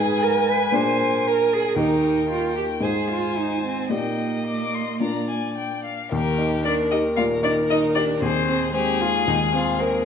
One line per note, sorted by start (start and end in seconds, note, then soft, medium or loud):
0.00 0.71 G#2 soft
0.00 0.71 D#4 soft
0.00 0.24 G#4 medium
0.00 0.71 G#4 soft
0.00 0.72 B4 soft
0.00 0.75 B4 soft
0.00 1.78 G#5 medium
0.23 0.50 A#4 medium
0.49 0.77 B4 medium
0.72 1.74 A#2 soft
0.72 1.74 D4 soft
0.72 1.75 G#4 soft
0.72 2.85 A#4 soft
0.72 1.75 A#4 soft
0.72 1.29 C5 medium
1.28 1.55 A#4 medium
1.54 1.78 G#4 medium
1.76 2.78 D#2 soft
1.76 2.78 D#4 soft
1.76 2.29 D#4 medium
1.76 2.78 G4 soft
1.76 2.79 A#4 soft
1.76 2.84 G5 soft
2.31 2.56 F4 medium
2.56 2.64 G4 medium
2.81 3.87 G#2 soft
2.81 3.87 D#4 soft
2.81 3.87 G#4 soft
2.81 3.09 G#4 medium
2.81 3.88 C5 soft
2.81 3.91 C5 soft
2.81 3.90 G#5 soft
3.11 3.39 F4 medium
3.38 3.64 D#4 soft
3.65 3.93 C4 soft
3.90 4.98 A#2 soft
3.90 5.84 A#3 soft
3.90 4.98 D#4 soft
3.90 4.98 G4 soft
3.90 4.99 A#4 soft
3.90 5.00 D#5 soft
3.90 4.40 G5 soft
4.46 4.76 D6 soft
4.75 5.01 C6 soft
5.00 6.07 A#2 soft
5.00 6.07 D4 soft
5.00 6.07 F4 soft
5.00 6.08 A#4 soft
5.00 5.89 D5 soft
5.00 5.29 A#5 soft
5.30 5.56 G#5 soft
5.57 5.84 G5 soft
5.85 6.11 F5 soft
6.11 7.14 D#2 medium
6.11 6.61 A#3 medium
6.11 6.66 G4 medium
6.11 6.61 A#4 medium
6.38 6.80 D#4 soft
6.64 6.90 D4 medium
6.64 8.23 A#4 medium
6.64 7.07 A#4 soft
6.64 6.73 D5 medium
6.91 6.99 D#4 soft
6.91 7.33 G4 soft
6.91 6.99 D#5 medium
7.17 7.59 A#2 soft
7.17 7.25 F4 medium
7.17 7.25 F5 medium
7.43 7.52 D4 medium
7.43 7.85 D#4 soft
7.43 7.51 D5 medium
7.69 7.98 D#4 medium
7.69 8.12 A#4 soft
7.69 7.78 D#5 medium
7.95 8.24 D4 medium
7.95 8.22 G4 soft
7.95 8.03 D5 medium
8.22 9.25 D#2 medium
8.22 8.74 C4 medium
8.22 8.75 G#4 medium
8.22 8.74 C5 medium
8.49 8.91 C4 soft
8.74 10.03 G#3 medium
8.74 9.02 G4 medium
8.74 10.03 G#4 medium
8.74 9.17 C5 soft
9.01 9.27 F4 medium
9.01 9.43 F4 soft
9.27 10.05 D#2 soft
9.27 9.36 D#4 medium
9.53 9.95 C4 soft
9.53 9.81 F4 medium
9.80 10.05 A#4 medium
9.80 10.05 C5 soft